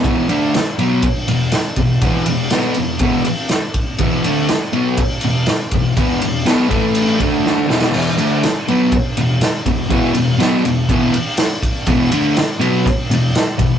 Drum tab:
CC |----------------|----------------|----------------|----------------|
RD |x-x-x-x-x-x-x-x-|x-x-x-x-x-x-x-x-|x-x-x-x-x-x-x-x-|x-x-x-x-x-x-----|
SD |----o-------o---|----o-------o---|----o-------o---|----o-------o-oo|
BD |o-------o-----o-|o-------o-----o-|o-------o-----o-|o-----o---o-----|

CC |x---------------|----------------|----------------|
RD |--x-x-x-x-x-x-x-|x-x-x-x-x-x-x-x-|x-x-x-x-x-x-x-x-|
SD |----o-------o---|----o-------o---|----o-------o---|
BD |--------o-----o-|o-------o-----o-|o-------o-----o-|